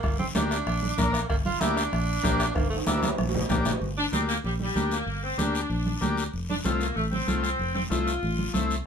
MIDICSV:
0, 0, Header, 1, 7, 480
1, 0, Start_track
1, 0, Tempo, 314961
1, 58, Time_signature, 4, 2, 24, 8
1, 13506, End_track
2, 0, Start_track
2, 0, Title_t, "Transistor combo organ"
2, 0, Program_c, 0, 18
2, 536, Note_on_c, 0, 58, 65
2, 545, Note_on_c, 0, 62, 62
2, 548, Note_on_c, 0, 67, 70
2, 872, Note_off_c, 0, 58, 0
2, 877, Note_off_c, 0, 62, 0
2, 878, Note_off_c, 0, 67, 0
2, 1489, Note_on_c, 0, 58, 72
2, 1493, Note_on_c, 0, 62, 66
2, 1504, Note_on_c, 0, 70, 77
2, 1828, Note_off_c, 0, 58, 0
2, 1830, Note_off_c, 0, 62, 0
2, 1836, Note_off_c, 0, 70, 0
2, 2453, Note_on_c, 0, 58, 68
2, 2462, Note_on_c, 0, 62, 56
2, 2464, Note_on_c, 0, 67, 81
2, 2790, Note_off_c, 0, 58, 0
2, 2794, Note_off_c, 0, 62, 0
2, 2795, Note_off_c, 0, 67, 0
2, 3399, Note_on_c, 0, 58, 76
2, 3406, Note_on_c, 0, 62, 64
2, 3412, Note_on_c, 0, 67, 90
2, 3742, Note_off_c, 0, 58, 0
2, 3746, Note_off_c, 0, 62, 0
2, 3749, Note_off_c, 0, 67, 0
2, 4368, Note_on_c, 0, 58, 66
2, 4374, Note_on_c, 0, 62, 58
2, 4380, Note_on_c, 0, 64, 74
2, 4707, Note_off_c, 0, 58, 0
2, 4709, Note_off_c, 0, 62, 0
2, 4712, Note_off_c, 0, 64, 0
2, 5319, Note_on_c, 0, 58, 75
2, 5324, Note_on_c, 0, 62, 72
2, 5331, Note_on_c, 0, 67, 79
2, 5662, Note_off_c, 0, 58, 0
2, 5664, Note_off_c, 0, 62, 0
2, 5668, Note_off_c, 0, 67, 0
2, 6280, Note_on_c, 0, 58, 59
2, 6286, Note_on_c, 0, 62, 57
2, 6295, Note_on_c, 0, 67, 62
2, 6623, Note_off_c, 0, 58, 0
2, 6625, Note_off_c, 0, 62, 0
2, 6630, Note_off_c, 0, 67, 0
2, 7243, Note_on_c, 0, 58, 56
2, 7251, Note_on_c, 0, 62, 57
2, 7256, Note_on_c, 0, 67, 72
2, 7584, Note_off_c, 0, 58, 0
2, 7588, Note_off_c, 0, 62, 0
2, 7591, Note_off_c, 0, 67, 0
2, 8198, Note_on_c, 0, 58, 65
2, 8202, Note_on_c, 0, 62, 64
2, 8209, Note_on_c, 0, 67, 72
2, 8542, Note_off_c, 0, 58, 0
2, 8544, Note_off_c, 0, 62, 0
2, 8548, Note_off_c, 0, 67, 0
2, 9156, Note_on_c, 0, 58, 71
2, 9164, Note_on_c, 0, 62, 69
2, 9171, Note_on_c, 0, 67, 76
2, 9501, Note_off_c, 0, 58, 0
2, 9505, Note_off_c, 0, 62, 0
2, 9509, Note_off_c, 0, 67, 0
2, 10126, Note_on_c, 0, 57, 66
2, 10135, Note_on_c, 0, 60, 62
2, 10140, Note_on_c, 0, 65, 78
2, 10467, Note_off_c, 0, 57, 0
2, 10471, Note_off_c, 0, 60, 0
2, 10473, Note_off_c, 0, 65, 0
2, 11083, Note_on_c, 0, 57, 59
2, 11091, Note_on_c, 0, 60, 56
2, 11095, Note_on_c, 0, 65, 66
2, 11425, Note_off_c, 0, 57, 0
2, 11429, Note_off_c, 0, 60, 0
2, 11431, Note_off_c, 0, 65, 0
2, 12047, Note_on_c, 0, 57, 65
2, 12053, Note_on_c, 0, 60, 52
2, 12061, Note_on_c, 0, 64, 69
2, 12387, Note_off_c, 0, 57, 0
2, 12390, Note_off_c, 0, 60, 0
2, 12394, Note_off_c, 0, 64, 0
2, 13007, Note_on_c, 0, 57, 75
2, 13013, Note_on_c, 0, 60, 71
2, 13018, Note_on_c, 0, 64, 78
2, 13347, Note_off_c, 0, 57, 0
2, 13350, Note_off_c, 0, 60, 0
2, 13353, Note_off_c, 0, 64, 0
2, 13506, End_track
3, 0, Start_track
3, 0, Title_t, "Saxophone section"
3, 0, Program_c, 1, 65
3, 6051, Note_on_c, 1, 62, 85
3, 6160, Note_off_c, 1, 62, 0
3, 6290, Note_on_c, 1, 60, 79
3, 6399, Note_off_c, 1, 60, 0
3, 6536, Note_on_c, 1, 58, 82
3, 6643, Note_off_c, 1, 58, 0
3, 6792, Note_on_c, 1, 55, 71
3, 6895, Note_off_c, 1, 55, 0
3, 7029, Note_on_c, 1, 55, 76
3, 7468, Note_off_c, 1, 55, 0
3, 7507, Note_on_c, 1, 58, 79
3, 7947, Note_off_c, 1, 58, 0
3, 7983, Note_on_c, 1, 60, 81
3, 8202, Note_off_c, 1, 60, 0
3, 8220, Note_on_c, 1, 62, 71
3, 9417, Note_off_c, 1, 62, 0
3, 9896, Note_on_c, 1, 62, 80
3, 10004, Note_off_c, 1, 62, 0
3, 10130, Note_on_c, 1, 60, 66
3, 10356, Note_off_c, 1, 60, 0
3, 10366, Note_on_c, 1, 58, 69
3, 10607, Note_on_c, 1, 57, 74
3, 10611, Note_off_c, 1, 58, 0
3, 10717, Note_off_c, 1, 57, 0
3, 10844, Note_on_c, 1, 60, 83
3, 11296, Note_off_c, 1, 60, 0
3, 11315, Note_on_c, 1, 60, 82
3, 11771, Note_off_c, 1, 60, 0
3, 11809, Note_on_c, 1, 60, 80
3, 11918, Note_off_c, 1, 60, 0
3, 12044, Note_on_c, 1, 65, 80
3, 13189, Note_off_c, 1, 65, 0
3, 13506, End_track
4, 0, Start_track
4, 0, Title_t, "Tenor saxophone"
4, 0, Program_c, 2, 66
4, 0, Note_on_c, 2, 58, 90
4, 268, Note_off_c, 2, 58, 0
4, 294, Note_on_c, 2, 60, 81
4, 403, Note_off_c, 2, 60, 0
4, 549, Note_on_c, 2, 62, 101
4, 1727, Note_on_c, 2, 58, 85
4, 1750, Note_off_c, 2, 62, 0
4, 1960, Note_off_c, 2, 58, 0
4, 1970, Note_on_c, 2, 58, 92
4, 2079, Note_off_c, 2, 58, 0
4, 2225, Note_on_c, 2, 65, 98
4, 2449, Note_on_c, 2, 64, 101
4, 2472, Note_off_c, 2, 65, 0
4, 2687, Note_on_c, 2, 62, 112
4, 2710, Note_off_c, 2, 64, 0
4, 3885, Note_on_c, 2, 58, 99
4, 3908, Note_off_c, 2, 62, 0
4, 4104, Note_off_c, 2, 58, 0
4, 4113, Note_on_c, 2, 57, 84
4, 4226, Note_off_c, 2, 57, 0
4, 4366, Note_on_c, 2, 55, 71
4, 4816, Note_off_c, 2, 55, 0
4, 13506, End_track
5, 0, Start_track
5, 0, Title_t, "Fingered electric bass"
5, 0, Program_c, 3, 33
5, 54, Note_on_c, 3, 31, 87
5, 439, Note_off_c, 3, 31, 0
5, 529, Note_on_c, 3, 38, 85
5, 916, Note_off_c, 3, 38, 0
5, 1014, Note_on_c, 3, 34, 85
5, 1399, Note_off_c, 3, 34, 0
5, 1500, Note_on_c, 3, 34, 85
5, 1882, Note_off_c, 3, 34, 0
5, 1978, Note_on_c, 3, 31, 92
5, 2361, Note_off_c, 3, 31, 0
5, 2456, Note_on_c, 3, 38, 79
5, 2840, Note_off_c, 3, 38, 0
5, 2936, Note_on_c, 3, 34, 97
5, 3319, Note_off_c, 3, 34, 0
5, 3418, Note_on_c, 3, 34, 84
5, 3800, Note_off_c, 3, 34, 0
5, 3898, Note_on_c, 3, 31, 94
5, 4280, Note_off_c, 3, 31, 0
5, 4370, Note_on_c, 3, 38, 80
5, 4755, Note_off_c, 3, 38, 0
5, 4852, Note_on_c, 3, 34, 83
5, 5236, Note_off_c, 3, 34, 0
5, 5332, Note_on_c, 3, 34, 83
5, 5716, Note_off_c, 3, 34, 0
5, 5809, Note_on_c, 3, 31, 82
5, 6195, Note_off_c, 3, 31, 0
5, 6284, Note_on_c, 3, 38, 93
5, 6672, Note_off_c, 3, 38, 0
5, 6768, Note_on_c, 3, 34, 85
5, 7154, Note_off_c, 3, 34, 0
5, 7246, Note_on_c, 3, 38, 89
5, 7633, Note_off_c, 3, 38, 0
5, 7717, Note_on_c, 3, 31, 82
5, 8108, Note_off_c, 3, 31, 0
5, 8194, Note_on_c, 3, 38, 86
5, 8586, Note_off_c, 3, 38, 0
5, 8682, Note_on_c, 3, 34, 81
5, 9071, Note_off_c, 3, 34, 0
5, 9169, Note_on_c, 3, 38, 82
5, 9555, Note_off_c, 3, 38, 0
5, 9655, Note_on_c, 3, 29, 81
5, 10039, Note_off_c, 3, 29, 0
5, 10130, Note_on_c, 3, 36, 90
5, 10516, Note_off_c, 3, 36, 0
5, 10609, Note_on_c, 3, 33, 88
5, 10996, Note_off_c, 3, 33, 0
5, 11089, Note_on_c, 3, 36, 88
5, 11476, Note_off_c, 3, 36, 0
5, 11571, Note_on_c, 3, 29, 84
5, 11957, Note_off_c, 3, 29, 0
5, 12048, Note_on_c, 3, 36, 86
5, 12435, Note_off_c, 3, 36, 0
5, 12537, Note_on_c, 3, 33, 86
5, 12921, Note_off_c, 3, 33, 0
5, 13014, Note_on_c, 3, 36, 91
5, 13399, Note_off_c, 3, 36, 0
5, 13506, End_track
6, 0, Start_track
6, 0, Title_t, "Two-headed folk drums"
6, 56, Note_on_c, 9, 36, 83
6, 58, Note_on_c, 9, 37, 85
6, 209, Note_off_c, 9, 36, 0
6, 210, Note_off_c, 9, 37, 0
6, 540, Note_on_c, 9, 37, 81
6, 692, Note_off_c, 9, 37, 0
6, 779, Note_on_c, 9, 37, 81
6, 932, Note_off_c, 9, 37, 0
6, 1021, Note_on_c, 9, 37, 83
6, 1174, Note_off_c, 9, 37, 0
6, 1498, Note_on_c, 9, 36, 72
6, 1501, Note_on_c, 9, 37, 78
6, 1651, Note_off_c, 9, 36, 0
6, 1654, Note_off_c, 9, 37, 0
6, 1740, Note_on_c, 9, 37, 86
6, 1893, Note_off_c, 9, 37, 0
6, 1975, Note_on_c, 9, 37, 78
6, 1977, Note_on_c, 9, 36, 86
6, 2128, Note_off_c, 9, 37, 0
6, 2130, Note_off_c, 9, 36, 0
6, 2460, Note_on_c, 9, 37, 77
6, 2612, Note_off_c, 9, 37, 0
6, 2697, Note_on_c, 9, 37, 82
6, 2849, Note_off_c, 9, 37, 0
6, 2942, Note_on_c, 9, 37, 82
6, 3094, Note_off_c, 9, 37, 0
6, 3418, Note_on_c, 9, 36, 73
6, 3422, Note_on_c, 9, 37, 79
6, 3570, Note_off_c, 9, 36, 0
6, 3574, Note_off_c, 9, 37, 0
6, 3658, Note_on_c, 9, 37, 92
6, 3811, Note_off_c, 9, 37, 0
6, 3896, Note_on_c, 9, 36, 83
6, 3899, Note_on_c, 9, 37, 83
6, 4049, Note_off_c, 9, 36, 0
6, 4051, Note_off_c, 9, 37, 0
6, 4375, Note_on_c, 9, 37, 84
6, 4527, Note_off_c, 9, 37, 0
6, 4614, Note_on_c, 9, 37, 83
6, 4766, Note_off_c, 9, 37, 0
6, 4854, Note_on_c, 9, 37, 83
6, 5007, Note_off_c, 9, 37, 0
6, 5335, Note_on_c, 9, 36, 73
6, 5337, Note_on_c, 9, 37, 75
6, 5487, Note_off_c, 9, 36, 0
6, 5489, Note_off_c, 9, 37, 0
6, 5576, Note_on_c, 9, 37, 90
6, 5729, Note_off_c, 9, 37, 0
6, 13506, End_track
7, 0, Start_track
7, 0, Title_t, "Drums"
7, 48, Note_on_c, 9, 65, 68
7, 58, Note_on_c, 9, 63, 32
7, 64, Note_on_c, 9, 74, 61
7, 200, Note_off_c, 9, 65, 0
7, 210, Note_off_c, 9, 63, 0
7, 216, Note_off_c, 9, 74, 0
7, 291, Note_on_c, 9, 63, 72
7, 443, Note_off_c, 9, 63, 0
7, 531, Note_on_c, 9, 63, 88
7, 534, Note_on_c, 9, 73, 67
7, 536, Note_on_c, 9, 65, 59
7, 684, Note_off_c, 9, 63, 0
7, 687, Note_off_c, 9, 73, 0
7, 689, Note_off_c, 9, 65, 0
7, 778, Note_on_c, 9, 65, 62
7, 781, Note_on_c, 9, 73, 71
7, 931, Note_off_c, 9, 65, 0
7, 933, Note_off_c, 9, 73, 0
7, 1014, Note_on_c, 9, 63, 34
7, 1019, Note_on_c, 9, 74, 72
7, 1022, Note_on_c, 9, 65, 63
7, 1166, Note_off_c, 9, 63, 0
7, 1171, Note_off_c, 9, 74, 0
7, 1175, Note_off_c, 9, 65, 0
7, 1250, Note_on_c, 9, 63, 71
7, 1402, Note_off_c, 9, 63, 0
7, 1491, Note_on_c, 9, 63, 77
7, 1494, Note_on_c, 9, 73, 69
7, 1503, Note_on_c, 9, 65, 63
7, 1643, Note_off_c, 9, 63, 0
7, 1647, Note_off_c, 9, 73, 0
7, 1656, Note_off_c, 9, 65, 0
7, 1736, Note_on_c, 9, 65, 67
7, 1739, Note_on_c, 9, 73, 72
7, 1888, Note_off_c, 9, 65, 0
7, 1891, Note_off_c, 9, 73, 0
7, 1975, Note_on_c, 9, 63, 36
7, 1980, Note_on_c, 9, 65, 61
7, 1980, Note_on_c, 9, 74, 63
7, 2128, Note_off_c, 9, 63, 0
7, 2132, Note_off_c, 9, 74, 0
7, 2133, Note_off_c, 9, 65, 0
7, 2216, Note_on_c, 9, 63, 65
7, 2368, Note_off_c, 9, 63, 0
7, 2452, Note_on_c, 9, 63, 85
7, 2454, Note_on_c, 9, 65, 60
7, 2459, Note_on_c, 9, 73, 72
7, 2605, Note_off_c, 9, 63, 0
7, 2606, Note_off_c, 9, 65, 0
7, 2612, Note_off_c, 9, 73, 0
7, 2699, Note_on_c, 9, 65, 64
7, 2704, Note_on_c, 9, 73, 71
7, 2852, Note_off_c, 9, 65, 0
7, 2856, Note_off_c, 9, 73, 0
7, 2932, Note_on_c, 9, 63, 35
7, 2939, Note_on_c, 9, 65, 59
7, 2941, Note_on_c, 9, 74, 72
7, 3084, Note_off_c, 9, 63, 0
7, 3091, Note_off_c, 9, 65, 0
7, 3094, Note_off_c, 9, 74, 0
7, 3408, Note_on_c, 9, 63, 73
7, 3417, Note_on_c, 9, 65, 72
7, 3417, Note_on_c, 9, 66, 69
7, 3422, Note_on_c, 9, 73, 70
7, 3561, Note_off_c, 9, 63, 0
7, 3569, Note_off_c, 9, 65, 0
7, 3569, Note_off_c, 9, 66, 0
7, 3574, Note_off_c, 9, 73, 0
7, 3654, Note_on_c, 9, 73, 66
7, 3657, Note_on_c, 9, 65, 62
7, 3807, Note_off_c, 9, 73, 0
7, 3810, Note_off_c, 9, 65, 0
7, 3890, Note_on_c, 9, 63, 34
7, 3895, Note_on_c, 9, 65, 70
7, 3895, Note_on_c, 9, 74, 61
7, 4042, Note_off_c, 9, 63, 0
7, 4047, Note_off_c, 9, 74, 0
7, 4048, Note_off_c, 9, 65, 0
7, 4212, Note_on_c, 9, 65, 84
7, 4364, Note_off_c, 9, 65, 0
7, 4368, Note_on_c, 9, 63, 82
7, 4374, Note_on_c, 9, 65, 74
7, 4374, Note_on_c, 9, 73, 73
7, 4520, Note_off_c, 9, 63, 0
7, 4526, Note_off_c, 9, 73, 0
7, 4527, Note_off_c, 9, 65, 0
7, 4535, Note_on_c, 9, 66, 82
7, 4611, Note_on_c, 9, 63, 89
7, 4614, Note_on_c, 9, 73, 73
7, 4687, Note_off_c, 9, 66, 0
7, 4694, Note_on_c, 9, 66, 91
7, 4764, Note_off_c, 9, 63, 0
7, 4767, Note_off_c, 9, 73, 0
7, 4846, Note_off_c, 9, 66, 0
7, 4851, Note_on_c, 9, 63, 69
7, 4852, Note_on_c, 9, 74, 69
7, 5003, Note_off_c, 9, 63, 0
7, 5004, Note_off_c, 9, 74, 0
7, 5014, Note_on_c, 9, 66, 70
7, 5098, Note_on_c, 9, 64, 97
7, 5167, Note_off_c, 9, 66, 0
7, 5168, Note_on_c, 9, 66, 89
7, 5250, Note_off_c, 9, 64, 0
7, 5320, Note_off_c, 9, 66, 0
7, 5323, Note_on_c, 9, 73, 63
7, 5331, Note_on_c, 9, 64, 94
7, 5475, Note_off_c, 9, 73, 0
7, 5483, Note_off_c, 9, 64, 0
7, 5566, Note_on_c, 9, 73, 71
7, 5578, Note_on_c, 9, 64, 81
7, 5651, Note_on_c, 9, 66, 76
7, 5718, Note_off_c, 9, 73, 0
7, 5731, Note_off_c, 9, 64, 0
7, 5803, Note_off_c, 9, 66, 0
7, 5816, Note_on_c, 9, 74, 58
7, 5818, Note_on_c, 9, 63, 33
7, 5968, Note_off_c, 9, 74, 0
7, 5971, Note_off_c, 9, 63, 0
7, 6292, Note_on_c, 9, 63, 70
7, 6298, Note_on_c, 9, 73, 64
7, 6445, Note_off_c, 9, 63, 0
7, 6450, Note_off_c, 9, 73, 0
7, 6536, Note_on_c, 9, 73, 62
7, 6688, Note_off_c, 9, 73, 0
7, 6768, Note_on_c, 9, 63, 31
7, 6776, Note_on_c, 9, 74, 62
7, 6921, Note_off_c, 9, 63, 0
7, 6928, Note_off_c, 9, 74, 0
7, 7005, Note_on_c, 9, 63, 66
7, 7157, Note_off_c, 9, 63, 0
7, 7252, Note_on_c, 9, 63, 78
7, 7259, Note_on_c, 9, 73, 59
7, 7405, Note_off_c, 9, 63, 0
7, 7411, Note_off_c, 9, 73, 0
7, 7487, Note_on_c, 9, 73, 63
7, 7639, Note_off_c, 9, 73, 0
7, 7733, Note_on_c, 9, 63, 27
7, 7736, Note_on_c, 9, 74, 49
7, 7885, Note_off_c, 9, 63, 0
7, 7889, Note_off_c, 9, 74, 0
7, 8213, Note_on_c, 9, 63, 74
7, 8214, Note_on_c, 9, 73, 64
7, 8365, Note_off_c, 9, 63, 0
7, 8366, Note_off_c, 9, 73, 0
7, 8456, Note_on_c, 9, 73, 64
7, 8608, Note_off_c, 9, 73, 0
7, 8694, Note_on_c, 9, 74, 67
7, 8701, Note_on_c, 9, 63, 31
7, 8846, Note_off_c, 9, 74, 0
7, 8853, Note_off_c, 9, 63, 0
7, 8929, Note_on_c, 9, 63, 66
7, 9082, Note_off_c, 9, 63, 0
7, 9171, Note_on_c, 9, 73, 60
7, 9174, Note_on_c, 9, 63, 75
7, 9324, Note_off_c, 9, 73, 0
7, 9326, Note_off_c, 9, 63, 0
7, 9411, Note_on_c, 9, 73, 61
7, 9563, Note_off_c, 9, 73, 0
7, 9655, Note_on_c, 9, 74, 56
7, 9659, Note_on_c, 9, 63, 29
7, 9807, Note_off_c, 9, 74, 0
7, 9812, Note_off_c, 9, 63, 0
7, 9899, Note_on_c, 9, 63, 59
7, 10051, Note_off_c, 9, 63, 0
7, 10132, Note_on_c, 9, 73, 63
7, 10143, Note_on_c, 9, 63, 82
7, 10285, Note_off_c, 9, 73, 0
7, 10296, Note_off_c, 9, 63, 0
7, 10373, Note_on_c, 9, 73, 59
7, 10525, Note_off_c, 9, 73, 0
7, 10622, Note_on_c, 9, 74, 62
7, 10627, Note_on_c, 9, 63, 28
7, 10775, Note_off_c, 9, 74, 0
7, 10780, Note_off_c, 9, 63, 0
7, 10861, Note_on_c, 9, 63, 70
7, 11014, Note_off_c, 9, 63, 0
7, 11092, Note_on_c, 9, 73, 56
7, 11099, Note_on_c, 9, 63, 72
7, 11244, Note_off_c, 9, 73, 0
7, 11252, Note_off_c, 9, 63, 0
7, 11335, Note_on_c, 9, 73, 66
7, 11487, Note_off_c, 9, 73, 0
7, 11574, Note_on_c, 9, 74, 53
7, 11586, Note_on_c, 9, 63, 30
7, 11727, Note_off_c, 9, 74, 0
7, 11739, Note_off_c, 9, 63, 0
7, 11817, Note_on_c, 9, 63, 59
7, 11969, Note_off_c, 9, 63, 0
7, 12061, Note_on_c, 9, 63, 72
7, 12063, Note_on_c, 9, 73, 63
7, 12214, Note_off_c, 9, 63, 0
7, 12215, Note_off_c, 9, 73, 0
7, 12304, Note_on_c, 9, 73, 62
7, 12456, Note_off_c, 9, 73, 0
7, 12537, Note_on_c, 9, 63, 31
7, 12541, Note_on_c, 9, 74, 63
7, 12690, Note_off_c, 9, 63, 0
7, 12693, Note_off_c, 9, 74, 0
7, 12774, Note_on_c, 9, 63, 64
7, 12927, Note_off_c, 9, 63, 0
7, 13016, Note_on_c, 9, 63, 75
7, 13021, Note_on_c, 9, 73, 61
7, 13168, Note_off_c, 9, 63, 0
7, 13173, Note_off_c, 9, 73, 0
7, 13265, Note_on_c, 9, 73, 60
7, 13417, Note_off_c, 9, 73, 0
7, 13506, End_track
0, 0, End_of_file